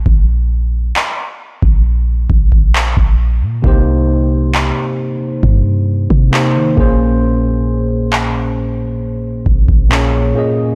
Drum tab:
CP |----x-------x---|----x-------x---|----x-------x---|
BD |o------o--oo-o--|o-------o--o--o-|----------oo----|